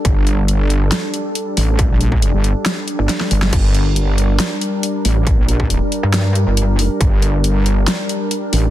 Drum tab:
CC |----------------|----------------|x---------------|----------------|
HH |x-x-x-x-x-x-x-o-|x-x-x-x-x-x-x-o-|x-x-x-x-x-x-x-o-|x-x-x-x-x-x-x-o-|
SD |--------o-------|--------o---oo-o|--------o-------|--------o-------|
BD |o---------------|o--o------------|o---------------|o--o------------|

CC |----------------|
HH |x-x-x-x-x-x-x-o-|
SD |--------o-------|
BD |o---------------|